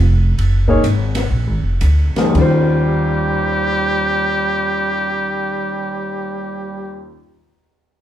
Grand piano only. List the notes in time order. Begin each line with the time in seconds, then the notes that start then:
0.68 A#3 D#4 G#4 C#5
2.17 C#2 F3 A#3 D#4 G#4
2.29 D#2 D#3
2.34 G3 C#4
2.39 F4 C5